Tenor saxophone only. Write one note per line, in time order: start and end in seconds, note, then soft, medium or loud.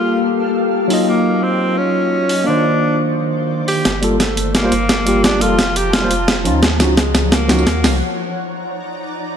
0.00 0.21 F4 medium
1.08 1.44 A#3 medium
1.43 1.79 C4 medium
1.78 2.48 C#4 medium
2.47 2.99 D4 loud
3.68 4.00 G4 loud
4.20 4.52 A3 medium
4.55 5.26 A#3 medium
5.24 5.43 D4 medium
5.42 5.78 F4 loud
5.76 5.95 G4 loud
5.94 6.46 F4 loud
6.98 7.34 G#3 medium
7.32 8.02 A#3 medium